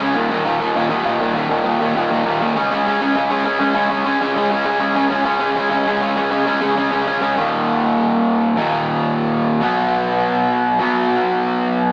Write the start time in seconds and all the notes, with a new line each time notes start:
0.00 C#3 G#3 C#4
0.15 D#2 A#2 D#3
0.30 D#2 A#2 D#3
0.46 D#2 A#2 D#3
0.60 D#2 A#2 D#3
0.75 D#2 A#2 D#3
0.90 D#2 A#2 D#3
1.05 D#2 A#2 D#3
1.21 D#2 A#2 D#3
1.34 D#2 A#2 D#3
1.50 D#2 A#2 D#3
1.65 D#2 A#2 D#3
1.81 D#2 A#2 D#3
1.96 D#2 A#2 D#3
2.10 D#2 A#2 D#3
2.25 D#2 A#2 D#3
2.41 D#2 A#2 D#3
2.55 C#3 G#3 C#4
2.71 C#3 G#3 C#4
2.87 C#3 G#3 C#4
3.01 C#3 G#3 C#4
3.15 C#3 G#3 C#4
3.30 C#3 G#3 C#4
3.44 C#3 G#3 C#4
3.59 C#3 G#3 C#4
3.75 C#3 G#3 C#4
3.90 C#3 G#3 C#4
4.05 C#3 G#3 C#4
4.21 C#3 G#3 C#4
4.35 C#3 G#3 C#4
4.51 C#3 G#3 C#4
4.65 C#3 G#3 C#4
4.80 C#3 G#3 C#4
4.95 C#3 G#3 C#4
5.10 C#3 G#3 C#4
5.25 C#3 G#3 C#4
5.40 C#3 G#3 C#4
5.56 C#3 G#3 C#4
5.70 C#3 G#3 C#4
5.87 C#3 G#3 C#4
6.02 C#3 G#3 C#4
6.16 C#3 G#3 C#4
6.31 C#3 G#3 C#4
6.47 C#3 G#3 C#4
6.61 C#3 G#3 C#4
6.76 C#3 G#3 C#4
6.91 C#3 G#3 C#4
7.07 C#3 G#3 C#4
7.22 C#3 G#3 C#4
7.35 D#2 A#2 D#3
8.56 D#2 A#2 D#3
9.61 B2 F#3 B3
10.80 B2 F#3 B3